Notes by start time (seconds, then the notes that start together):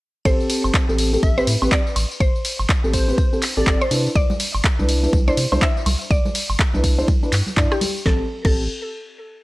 0.25 A1 C4 G4 A4 C5, kick, ride, tambourine
0.40 tambourine
0.50 open hi-hat, ride, tambourine
0.64 G1, tambourine, high woodblock
0.74 kick, clap, ride, tambourine
0.89 A1 C4 G4 A4, tambourine
0.98 open hi-hat, ride, tambourine
1.13 C4 G4 A4, tambourine
1.23 A1 E5, kick, ride, tambourine
1.38 C4 G4 B4 C5, tambourine
1.47 A2, open hi-hat, ride, tambourine
1.62 A1 C4 G4 B4, tambourine, high woodblock
1.72 D5, kick, clap, ride, tambourine
1.87 tambourine
1.96 A1, open hi-hat, ride, tambourine, high woodblock
2.11 tambourine
2.20 A1 C5, kick, ride, tambourine
2.36 tambourine
2.45 open hi-hat, ride, tambourine
2.59 G1, tambourine, high woodblock
2.69 kick, clap, ride, tambourine
2.84 A1 C4 G4 A4, tambourine
2.93 C5, kick, open hi-hat, ride, tambourine
3.08 C4 G4 B4, tambourine
3.18 kick, ride, tambourine
3.33 C4 G4 A4, tambourine
3.42 clap, open hi-hat, ride, tambourine
3.57 A1 C4 G4 A4 D5, tambourine
3.67 G1 C4 G4, kick, clap, ride, tambourine
3.81 C5, tambourine, high woodblock
3.91 C3 D4 E4 B4, open hi-hat, ride, tambourine
4.06 tambourine
4.15 C2 D5, kick, ride, tambourine
4.30 tambourine, high conga
4.40 open hi-hat, ride, tambourine
4.55 G1, tambourine, high woodblock
4.64 kick, clap, ride, tambourine
4.79 C2 D4 E4 B4, tambourine, high conga
4.89 open hi-hat, ride, tambourine
5.03 D4 E4 B4, tambourine
5.13 C2, kick, ride, tambourine, high conga
5.28 D4 E4 C5 D5, tambourine
5.37 C3, open hi-hat, ride, tambourine
5.52 C2 D4 E4 C5, tambourine, high conga, high woodblock
5.62 E5, kick, clap, ride, tambourine
5.77 tambourine
5.86 C2, open hi-hat, ride, tambourine, high conga, high woodblock
6.01 tambourine
6.11 C2 D5, kick, ride, tambourine
6.25 tambourine, high conga
6.35 open hi-hat, ride, tambourine
6.50 G1, tambourine, high woodblock
6.59 kick, clap, ride, tambourine
6.73 C2 D4 E4 B4, tambourine, high conga
6.84 kick, open hi-hat, ride, tambourine
6.98 D4 E4 C5, tambourine
7.08 kick, ride, tambourine, high conga
7.23 D4 E4 B4, tambourine
7.33 G2, clap, open hi-hat, ride, tambourine
7.47 tambourine, high conga
7.57 G2 D4 E4 D5, kick, clap, ride, tambourine
7.72 G4, tambourine, high woodblock
7.81 open hi-hat, ride, tambourine, high conga
7.97 tambourine
8.06 A1 C4 G4 A4, kick, snare
8.45 A1 C4 G4 A4, kick, crash